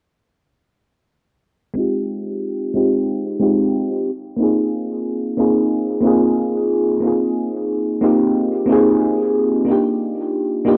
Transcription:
0, 0, Header, 1, 2, 480
1, 0, Start_track
1, 0, Tempo, 659341
1, 1283, Time_signature, 4, 2, 24, 8
1, 7841, End_track
2, 0, Start_track
2, 0, Title_t, "FM electric piano"
2, 0, Program_c, 0, 5
2, 1263, Note_on_c, 0, 56, 67
2, 1273, Note_on_c, 0, 60, 57
2, 1288, Note_on_c, 0, 63, 59
2, 1298, Note_on_c, 0, 65, 56
2, 1310, Note_on_c, 0, 67, 70
2, 1441, Control_c, 0, 64, 127
2, 1968, Note_off_c, 0, 56, 0
2, 1973, Note_off_c, 0, 60, 0
2, 1980, Note_off_c, 0, 63, 0
2, 1985, Note_off_c, 0, 65, 0
2, 1991, Note_off_c, 0, 67, 0
2, 1993, Note_on_c, 0, 56, 75
2, 1999, Note_on_c, 0, 60, 66
2, 2004, Note_on_c, 0, 63, 68
2, 2010, Note_on_c, 0, 65, 68
2, 2015, Note_on_c, 0, 67, 82
2, 2452, Note_off_c, 0, 56, 0
2, 2456, Note_off_c, 0, 60, 0
2, 2458, Note_off_c, 0, 63, 0
2, 2461, Note_off_c, 0, 65, 0
2, 2464, Note_off_c, 0, 67, 0
2, 2472, Note_on_c, 0, 56, 83
2, 2477, Note_on_c, 0, 60, 77
2, 2483, Note_on_c, 0, 63, 72
2, 2490, Note_on_c, 0, 65, 77
2, 2493, Note_on_c, 0, 67, 91
2, 2945, Note_off_c, 0, 56, 0
2, 2947, Note_off_c, 0, 60, 0
2, 2950, Note_off_c, 0, 63, 0
2, 2954, Note_off_c, 0, 65, 0
2, 2955, Note_off_c, 0, 67, 0
2, 2972, Control_c, 0, 64, 0
2, 3098, Control_c, 0, 64, 127
2, 3178, Note_on_c, 0, 58, 67
2, 3191, Note_on_c, 0, 60, 59
2, 3201, Note_on_c, 0, 63, 60
2, 3214, Note_on_c, 0, 65, 61
2, 3226, Note_on_c, 0, 68, 70
2, 3885, Note_off_c, 0, 58, 0
2, 3892, Note_off_c, 0, 60, 0
2, 3897, Note_off_c, 0, 63, 0
2, 3903, Note_off_c, 0, 65, 0
2, 3909, Note_off_c, 0, 68, 0
2, 3911, Note_on_c, 0, 58, 76
2, 3916, Note_on_c, 0, 60, 72
2, 3924, Note_on_c, 0, 63, 74
2, 3931, Note_on_c, 0, 65, 72
2, 3935, Note_on_c, 0, 68, 83
2, 4365, Note_off_c, 0, 58, 0
2, 4373, Note_on_c, 0, 58, 83
2, 4374, Note_off_c, 0, 60, 0
2, 4378, Note_off_c, 0, 63, 0
2, 4381, Note_off_c, 0, 65, 0
2, 4383, Note_off_c, 0, 68, 0
2, 4386, Note_on_c, 0, 60, 81
2, 4397, Note_on_c, 0, 63, 80
2, 4408, Note_on_c, 0, 65, 81
2, 4421, Note_on_c, 0, 68, 98
2, 5083, Note_off_c, 0, 58, 0
2, 5089, Note_off_c, 0, 60, 0
2, 5095, Note_off_c, 0, 63, 0
2, 5099, Note_on_c, 0, 58, 67
2, 5100, Note_off_c, 0, 65, 0
2, 5106, Note_off_c, 0, 68, 0
2, 5111, Note_on_c, 0, 60, 62
2, 5126, Note_on_c, 0, 63, 61
2, 5132, Control_c, 0, 64, 0
2, 5136, Note_on_c, 0, 65, 61
2, 5148, Note_on_c, 0, 68, 72
2, 5271, Control_c, 0, 64, 127
2, 5806, Note_off_c, 0, 58, 0
2, 5812, Note_off_c, 0, 60, 0
2, 5819, Note_off_c, 0, 63, 0
2, 5824, Note_off_c, 0, 65, 0
2, 5830, Note_off_c, 0, 68, 0
2, 5833, Note_on_c, 0, 58, 83
2, 5837, Note_on_c, 0, 60, 75
2, 5846, Note_on_c, 0, 63, 79
2, 5851, Note_on_c, 0, 65, 75
2, 5857, Note_on_c, 0, 67, 89
2, 6293, Note_off_c, 0, 58, 0
2, 6295, Note_off_c, 0, 60, 0
2, 6299, Note_off_c, 0, 63, 0
2, 6301, Note_off_c, 0, 65, 0
2, 6303, Note_on_c, 0, 58, 87
2, 6304, Note_off_c, 0, 67, 0
2, 6313, Note_on_c, 0, 60, 82
2, 6327, Note_on_c, 0, 63, 81
2, 6338, Note_on_c, 0, 65, 77
2, 6350, Note_on_c, 0, 68, 100
2, 7008, Note_off_c, 0, 58, 0
2, 7013, Note_off_c, 0, 60, 0
2, 7020, Note_off_c, 0, 63, 0
2, 7023, Note_on_c, 0, 58, 68
2, 7025, Note_off_c, 0, 65, 0
2, 7031, Note_off_c, 0, 68, 0
2, 7035, Note_on_c, 0, 62, 62
2, 7046, Note_on_c, 0, 63, 60
2, 7051, Control_c, 0, 64, 0
2, 7057, Note_on_c, 0, 65, 66
2, 7071, Note_on_c, 0, 67, 80
2, 7173, Control_c, 0, 64, 127
2, 7728, Note_off_c, 0, 58, 0
2, 7733, Note_off_c, 0, 62, 0
2, 7739, Note_off_c, 0, 63, 0
2, 7745, Note_off_c, 0, 65, 0
2, 7752, Note_off_c, 0, 67, 0
2, 7752, Note_on_c, 0, 58, 84
2, 7757, Note_on_c, 0, 62, 79
2, 7764, Note_on_c, 0, 63, 77
2, 7769, Note_on_c, 0, 65, 76
2, 7775, Note_on_c, 0, 67, 91
2, 7841, Note_off_c, 0, 58, 0
2, 7841, Note_off_c, 0, 62, 0
2, 7841, Note_off_c, 0, 63, 0
2, 7841, Note_off_c, 0, 65, 0
2, 7841, Note_off_c, 0, 67, 0
2, 7841, End_track
0, 0, End_of_file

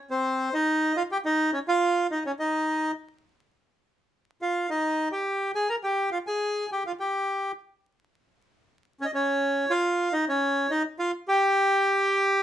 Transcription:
0, 0, Header, 1, 2, 480
1, 0, Start_track
1, 0, Tempo, 572519
1, 73, Time_signature, 4, 2, 24, 8
1, 10419, End_track
2, 0, Start_track
2, 0, Title_t, "Bandoneon"
2, 0, Program_c, 0, 23
2, 87, Note_on_c, 0, 60, 63
2, 90, Note_on_c, 0, 72, 84
2, 414, Note_off_c, 0, 60, 0
2, 450, Note_on_c, 0, 63, 60
2, 450, Note_on_c, 0, 75, 84
2, 451, Note_off_c, 0, 72, 0
2, 776, Note_off_c, 0, 63, 0
2, 809, Note_on_c, 0, 65, 65
2, 811, Note_off_c, 0, 75, 0
2, 811, Note_on_c, 0, 77, 82
2, 859, Note_off_c, 0, 65, 0
2, 861, Note_off_c, 0, 77, 0
2, 935, Note_on_c, 0, 67, 66
2, 940, Note_on_c, 0, 79, 83
2, 983, Note_off_c, 0, 67, 0
2, 987, Note_off_c, 0, 79, 0
2, 1050, Note_on_c, 0, 63, 63
2, 1054, Note_on_c, 0, 75, 84
2, 1264, Note_off_c, 0, 63, 0
2, 1266, Note_off_c, 0, 75, 0
2, 1282, Note_on_c, 0, 61, 60
2, 1286, Note_on_c, 0, 73, 71
2, 1333, Note_off_c, 0, 61, 0
2, 1336, Note_off_c, 0, 73, 0
2, 1407, Note_on_c, 0, 65, 66
2, 1410, Note_on_c, 0, 77, 87
2, 1734, Note_off_c, 0, 65, 0
2, 1735, Note_off_c, 0, 77, 0
2, 1770, Note_on_c, 0, 63, 59
2, 1771, Note_on_c, 0, 75, 76
2, 1872, Note_off_c, 0, 63, 0
2, 1872, Note_off_c, 0, 75, 0
2, 1894, Note_on_c, 0, 61, 51
2, 1896, Note_on_c, 0, 73, 71
2, 1942, Note_off_c, 0, 61, 0
2, 1944, Note_off_c, 0, 73, 0
2, 2006, Note_on_c, 0, 63, 60
2, 2007, Note_on_c, 0, 75, 76
2, 2444, Note_off_c, 0, 63, 0
2, 2444, Note_off_c, 0, 75, 0
2, 3703, Note_on_c, 0, 65, 51
2, 3705, Note_on_c, 0, 77, 67
2, 3913, Note_off_c, 0, 65, 0
2, 3937, Note_off_c, 0, 77, 0
2, 3940, Note_on_c, 0, 63, 58
2, 3941, Note_on_c, 0, 75, 73
2, 4264, Note_off_c, 0, 63, 0
2, 4265, Note_off_c, 0, 75, 0
2, 4291, Note_on_c, 0, 67, 59
2, 4294, Note_on_c, 0, 79, 75
2, 4621, Note_off_c, 0, 67, 0
2, 4623, Note_off_c, 0, 79, 0
2, 4654, Note_on_c, 0, 68, 63
2, 4654, Note_on_c, 0, 80, 81
2, 4759, Note_off_c, 0, 68, 0
2, 4771, Note_off_c, 0, 80, 0
2, 4772, Note_on_c, 0, 82, 78
2, 4778, Note_on_c, 0, 70, 64
2, 4824, Note_off_c, 0, 82, 0
2, 4828, Note_off_c, 0, 70, 0
2, 4890, Note_on_c, 0, 79, 80
2, 4895, Note_on_c, 0, 67, 65
2, 5110, Note_off_c, 0, 79, 0
2, 5113, Note_off_c, 0, 67, 0
2, 5128, Note_on_c, 0, 77, 72
2, 5135, Note_on_c, 0, 65, 53
2, 5180, Note_off_c, 0, 77, 0
2, 5186, Note_off_c, 0, 65, 0
2, 5255, Note_on_c, 0, 80, 82
2, 5263, Note_on_c, 0, 68, 63
2, 5587, Note_off_c, 0, 68, 0
2, 5618, Note_off_c, 0, 80, 0
2, 5636, Note_on_c, 0, 79, 74
2, 5637, Note_on_c, 0, 67, 58
2, 5731, Note_off_c, 0, 79, 0
2, 5732, Note_off_c, 0, 67, 0
2, 5755, Note_on_c, 0, 77, 68
2, 5762, Note_on_c, 0, 65, 53
2, 5801, Note_off_c, 0, 77, 0
2, 5807, Note_off_c, 0, 65, 0
2, 5866, Note_on_c, 0, 79, 72
2, 5870, Note_on_c, 0, 67, 61
2, 6301, Note_off_c, 0, 79, 0
2, 6303, Note_off_c, 0, 67, 0
2, 7548, Note_on_c, 0, 61, 54
2, 7557, Note_on_c, 0, 73, 71
2, 7587, Note_on_c, 0, 75, 61
2, 7588, Note_off_c, 0, 61, 0
2, 7597, Note_off_c, 0, 73, 0
2, 7639, Note_off_c, 0, 75, 0
2, 7659, Note_on_c, 0, 61, 59
2, 7670, Note_on_c, 0, 73, 76
2, 8094, Note_off_c, 0, 61, 0
2, 8131, Note_on_c, 0, 65, 61
2, 8135, Note_on_c, 0, 77, 81
2, 8146, Note_off_c, 0, 73, 0
2, 8457, Note_off_c, 0, 65, 0
2, 8491, Note_on_c, 0, 63, 65
2, 8493, Note_on_c, 0, 75, 80
2, 8494, Note_off_c, 0, 77, 0
2, 8594, Note_off_c, 0, 63, 0
2, 8595, Note_off_c, 0, 75, 0
2, 8624, Note_on_c, 0, 73, 77
2, 8625, Note_on_c, 0, 61, 62
2, 8944, Note_off_c, 0, 61, 0
2, 8975, Note_on_c, 0, 63, 58
2, 8976, Note_on_c, 0, 75, 79
2, 8977, Note_off_c, 0, 73, 0
2, 9078, Note_off_c, 0, 63, 0
2, 9078, Note_off_c, 0, 75, 0
2, 9215, Note_on_c, 0, 65, 69
2, 9216, Note_on_c, 0, 77, 82
2, 9317, Note_off_c, 0, 65, 0
2, 9318, Note_off_c, 0, 77, 0
2, 9458, Note_on_c, 0, 67, 77
2, 9461, Note_on_c, 0, 79, 103
2, 10419, Note_off_c, 0, 67, 0
2, 10419, Note_off_c, 0, 79, 0
2, 10419, End_track
0, 0, End_of_file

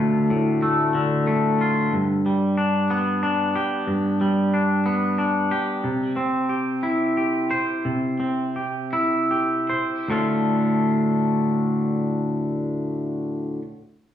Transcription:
0, 0, Header, 1, 2, 480
1, 0, Start_track
1, 0, Tempo, 650759
1, 1421, Time_signature, 6, 3, 24, 8
1, 4302, Tempo, 670391
1, 5742, Tempo, 729927
1, 6702, Tempo, 811908
1, 9566, End_track
2, 0, Start_track
2, 0, Title_t, "Clean electric guitar"
2, 0, Program_c, 0, 27
2, 0, Note_on_c, 0, 38, 41
2, 0, Note_on_c, 0, 50, 41
2, 0, Note_on_c, 0, 57, 40
2, 0, Note_on_c, 0, 65, 39
2, 224, Note_on_c, 0, 45, 40
2, 456, Note_off_c, 0, 57, 0
2, 459, Note_on_c, 0, 57, 39
2, 695, Note_off_c, 0, 50, 0
2, 698, Note_on_c, 0, 50, 40
2, 935, Note_off_c, 0, 57, 0
2, 938, Note_on_c, 0, 57, 38
2, 944, Note_off_c, 0, 65, 0
2, 1188, Note_on_c, 0, 65, 40
2, 1422, Note_off_c, 0, 38, 0
2, 1422, Note_off_c, 0, 45, 0
2, 1424, Note_off_c, 0, 65, 0
2, 1425, Note_on_c, 0, 43, 39
2, 1447, Note_off_c, 0, 57, 0
2, 1663, Note_off_c, 0, 50, 0
2, 1666, Note_on_c, 0, 55, 36
2, 1900, Note_on_c, 0, 62, 37
2, 2142, Note_on_c, 0, 59, 41
2, 2372, Note_off_c, 0, 62, 0
2, 2381, Note_on_c, 0, 62, 38
2, 2623, Note_off_c, 0, 43, 0
2, 2623, Note_on_c, 0, 67, 39
2, 2857, Note_on_c, 0, 43, 38
2, 3103, Note_off_c, 0, 55, 0
2, 3106, Note_on_c, 0, 55, 39
2, 3337, Note_off_c, 0, 62, 0
2, 3342, Note_off_c, 0, 59, 0
2, 3346, Note_on_c, 0, 62, 38
2, 3583, Note_on_c, 0, 59, 41
2, 3814, Note_off_c, 0, 62, 0
2, 3823, Note_on_c, 0, 62, 37
2, 4060, Note_off_c, 0, 43, 0
2, 4064, Note_off_c, 0, 67, 0
2, 4067, Note_on_c, 0, 67, 39
2, 4303, Note_off_c, 0, 59, 0
2, 4303, Note_off_c, 0, 62, 0
2, 4308, Note_on_c, 0, 48, 39
2, 4537, Note_off_c, 0, 55, 0
2, 4540, Note_on_c, 0, 60, 41
2, 4776, Note_off_c, 0, 67, 0
2, 4776, Note_on_c, 0, 67, 34
2, 5016, Note_on_c, 0, 64, 37
2, 5253, Note_off_c, 0, 67, 0
2, 5261, Note_on_c, 0, 67, 34
2, 5498, Note_off_c, 0, 48, 0
2, 5500, Note_on_c, 0, 72, 39
2, 5745, Note_off_c, 0, 60, 0
2, 5747, Note_on_c, 0, 48, 36
2, 5974, Note_on_c, 0, 60, 33
2, 6205, Note_off_c, 0, 67, 0
2, 6213, Note_on_c, 0, 67, 34
2, 6215, Note_off_c, 0, 64, 0
2, 6456, Note_on_c, 0, 64, 37
2, 6698, Note_off_c, 0, 67, 0
2, 6705, Note_on_c, 0, 67, 33
2, 6706, Note_off_c, 0, 72, 0
2, 6933, Note_on_c, 0, 72, 34
2, 6936, Note_off_c, 0, 48, 0
2, 7164, Note_on_c, 0, 38, 45
2, 7171, Note_off_c, 0, 60, 0
2, 7171, Note_off_c, 0, 72, 0
2, 7171, Note_on_c, 0, 45, 44
2, 7172, Note_off_c, 0, 64, 0
2, 7173, Note_off_c, 0, 67, 0
2, 7175, Note_on_c, 0, 50, 47
2, 7182, Note_on_c, 0, 57, 49
2, 7186, Note_on_c, 0, 65, 46
2, 9233, Note_off_c, 0, 38, 0
2, 9240, Note_off_c, 0, 45, 0
2, 9244, Note_off_c, 0, 50, 0
2, 9251, Note_off_c, 0, 57, 0
2, 9256, Note_off_c, 0, 65, 0
2, 9566, End_track
0, 0, End_of_file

